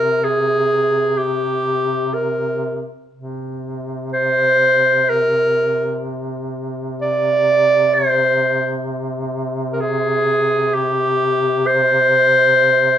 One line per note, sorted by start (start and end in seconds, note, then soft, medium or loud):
0.00 2.98 C3 medium
0.00 0.25 A#4 medium
0.24 1.19 G#4 medium
1.18 2.15 G4 medium
2.13 2.88 A#4 medium
3.15 12.98 C3 medium
4.12 5.11 C5 loud
5.09 6.04 A#4 medium
7.01 7.95 D5 medium
7.94 8.85 C5 medium
9.73 9.82 A#4 medium
9.80 10.75 G#4 medium
10.74 11.68 G4 medium
11.67 12.98 C5 loud